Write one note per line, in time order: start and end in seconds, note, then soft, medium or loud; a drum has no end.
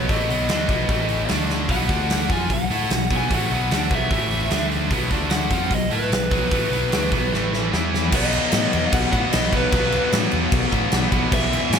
0.00 0.11 C#5 medium
0.08 0.27 A1 medium
0.08 0.28 A2 medium
0.08 0.29 E3 medium
0.08 0.29 A3 medium
0.08 1.27 D#5 medium
0.08 kick loud
0.08 open hi-hat medium
0.28 0.47 B1 loud
0.28 0.49 B2 loud
0.28 0.49 F#3 loud
0.28 0.49 B3 loud
0.28 open hi-hat medium
0.48 0.67 D2 medium
0.48 0.69 D3 medium
0.48 0.69 A3 medium
0.48 0.70 D4 medium
0.48 snare loud
0.48 open hi-hat medium
0.69 0.88 B1 medium
0.69 0.89 B2 medium
0.69 0.89 F#3 medium
0.69 0.89 B3 loud
0.69 kick loud
0.69 open hi-hat medium
0.89 1.27 A1 medium
0.89 1.29 A2 medium
0.89 1.30 E3 loud
0.89 1.30 A3 loud
0.89 kick loud
0.89 open hi-hat medium
1.08 open hi-hat medium
1.29 1.67 D2 loud
1.29 1.68 D3 medium
1.29 1.69 A3 medium
1.29 1.69 D4 medium
1.29 snare loud
1.29 open hi-hat medium
1.50 snare medium
1.68 1.88 B1 medium
1.68 1.89 B2 medium
1.68 1.89 F#3 medium
1.68 1.90 B3 loud
1.68 2.33 F#5 loud
1.68 kick loud
1.68 open hi-hat medium
1.89 2.27 D2 loud
1.89 2.29 D3 loud
1.89 2.30 A3 loud
1.89 2.30 D4 loud
1.89 kick loud
1.89 open hi-hat medium
2.10 snare loud
2.10 open hi-hat medium
2.29 2.48 F2 medium
2.29 2.50 F3 medium
2.29 2.50 C4 medium
2.29 2.50 F4 loud
2.29 2.52 G#5 medium
2.29 kick loud
2.29 open hi-hat medium
2.49 2.69 B1 medium
2.49 2.67 B2 medium
2.49 2.67 F#3 medium
2.49 3.14 F#5 loud
2.49 kick medium
2.49 open hi-hat medium
2.71 2.89 A2 medium
2.71 2.90 A3 medium
2.71 2.91 E4 loud
2.71 2.91 A4 medium
2.71 open hi-hat medium
2.90 3.09 B1 medium
2.90 3.07 B2 medium
2.90 3.07 F#3 medium
2.90 snare loud
2.90 open hi-hat medium
3.10 3.29 B1 medium
3.10 3.30 B2 medium
3.10 3.31 F#3 medium
3.10 3.31 B3 medium
3.10 kick loud
3.10 open hi-hat medium
3.17 3.34 G#5 medium
3.30 3.49 A1 medium
3.30 3.51 A2 medium
3.30 3.51 E3 medium
3.30 3.52 A3 loud
3.30 3.95 F#5 loud
3.30 kick loud
3.30 open hi-hat medium
3.50 3.69 B1 loud
3.50 3.71 B2 medium
3.50 3.71 F#3 medium
3.50 3.72 B3 loud
3.50 open hi-hat soft
3.71 3.90 D2 loud
3.71 3.91 D3 medium
3.71 3.91 A3 loud
3.71 3.92 D4 medium
3.71 snare loud
3.71 open hi-hat medium
3.91 4.10 B1 loud
3.91 4.11 B2 medium
3.91 4.11 F#3 medium
3.91 4.12 B3 loud
3.91 kick loud
3.91 open hi-hat medium
3.95 4.70 E5 medium
4.10 4.48 A1 medium
4.10 4.51 A2 loud
4.10 4.52 E3 loud
4.10 4.51 A3 loud
4.10 kick loud
4.10 open hi-hat medium
4.31 open hi-hat soft
4.51 4.89 D2 medium
4.51 4.91 D3 medium
4.51 4.92 A3 loud
4.51 4.92 D4 loud
4.51 snare loud
4.51 open hi-hat medium
4.71 open hi-hat medium
4.90 5.10 B1 medium
4.90 5.11 B2 medium
4.90 5.12 F#3 loud
4.90 5.12 B3 loud
4.90 kick loud
4.90 open hi-hat medium
5.10 5.49 D2 loud
5.10 5.51 D3 loud
5.10 5.52 A3 loud
5.10 5.53 D4 loud
5.10 kick medium
5.10 open hi-hat medium
5.30 5.73 F#5 loud
5.30 snare loud
5.30 open hi-hat medium
5.50 5.70 F2 loud
5.50 5.71 F3 medium
5.50 5.72 C4 medium
5.50 5.73 F4 loud
5.50 kick loud
5.50 open hi-hat medium
5.70 5.90 B1 medium
5.70 5.88 B2 medium
5.70 5.88 F#3 medium
5.70 kick medium
5.70 open hi-hat medium
5.75 5.94 D#5 loud
5.91 6.10 A2 loud
5.91 6.11 A3 loud
5.91 6.12 E4 medium
5.91 6.12 A4 medium
5.91 7.69 B4 medium
5.91 open hi-hat soft
6.10 6.30 B1 medium
6.10 6.28 B2 medium
6.10 6.28 F#3 medium
6.10 snare loud
6.10 open hi-hat medium
6.31 6.51 B1 medium
6.31 6.51 B2 medium
6.31 6.52 F#3 medium
6.31 6.52 B3 medium
6.31 kick loud
6.31 open hi-hat medium
6.51 6.70 A1 medium
6.51 6.72 A2 medium
6.51 6.72 E3 loud
6.51 6.72 A3 loud
6.51 kick loud
6.51 open hi-hat medium
6.70 6.90 B1 medium
6.70 6.92 B2 loud
6.70 6.93 F#3 loud
6.70 6.93 B3 loud
6.70 open hi-hat medium
6.92 7.11 D2 medium
6.92 7.12 D3 medium
6.92 7.13 A3 medium
6.92 7.13 D4 medium
6.92 snare loud
6.92 open hi-hat medium
7.12 7.31 B1 loud
7.12 7.32 B2 medium
7.12 7.33 F#3 medium
7.12 7.33 B3 loud
7.12 kick loud
7.12 open hi-hat medium
7.33 7.71 A1 loud
7.33 7.73 A2 loud
7.33 7.72 E3 loud
7.33 7.73 A3 loud
7.33 snare medium
7.53 snare medium
7.73 8.11 E2 medium
7.73 8.11 E3 loud
7.73 8.13 B3 loud
7.73 8.13 E4 loud
7.73 snare medium
7.94 snare medium
8.11 8.37 B1 loud
8.11 9.15 B2 loud
8.11 9.12 F#3 loud
8.11 9.11 B3 loud
8.11 kick loud
8.11 crash loud
8.11 crash medium
8.16 9.74 D#4 loud
8.16 8.92 D#5 loud
8.33 crash medium
8.52 8.65 A2 medium
8.52 snare loud
8.52 crash loud
8.73 8.86 E2 loud
8.73 crash medium
8.93 9.05 B1 loud
8.93 9.11 F#5 loud
8.93 kick loud
8.93 crash loud
9.12 9.25 A2 loud
9.12 9.32 B2 medium
9.12 9.33 F#3 medium
9.12 9.36 B3 medium
9.12 9.33 F#5 loud
9.12 kick medium
9.12 crash medium
9.32 9.46 B1 loud
9.32 9.71 B2 medium
9.32 9.72 F#3 medium
9.32 9.54 D#5 medium
9.32 snare loud
9.32 crash loud
9.36 9.75 B3 loud
9.52 9.65 B1 medium
9.52 9.72 B2 medium
9.52 9.72 F#3 medium
9.52 9.74 B3 loud
9.52 10.10 B4 medium
9.52 kick medium
9.52 crash medium
9.72 9.97 B1 loud
9.72 10.74 B2 medium
9.72 10.72 F#3 loud
9.72 10.71 B3 loud
9.72 11.33 D#4 loud
9.72 kick loud
9.72 crash medium
9.92 crash medium
10.12 10.25 A2 medium
10.12 snare loud
10.12 crash medium
10.32 10.46 E2 loud
10.32 crash medium
10.52 10.65 B1 loud
10.52 kick loud
10.52 crash medium
10.71 10.85 A2 medium
10.71 10.91 B2 medium
10.71 10.92 F#3 medium
10.71 10.95 B3 medium
10.71 kick medium
10.71 crash medium
10.91 11.05 B1 loud
10.91 11.33 B2 medium
10.91 11.32 F#3 medium
10.91 snare loud
10.91 crash medium
10.95 11.79 B3 loud
11.11 11.24 B1 medium
11.11 11.32 B2 medium
11.11 11.32 F#3 medium
11.11 11.79 B3 loud
11.11 kick medium
11.11 crash medium
11.31 11.57 B1 loud
11.31 11.79 E2 medium
11.31 11.79 B2 loud
11.31 11.79 E3 loud
11.31 11.79 B3 loud
11.31 11.79 E4 loud
11.31 11.79 G#4 loud
11.31 11.75 E5 loud
11.31 kick loud
11.31 crash loud
11.53 crash medium
11.70 11.79 A2 medium
11.70 11.79 G#5 loud
11.70 snare loud
11.70 crash loud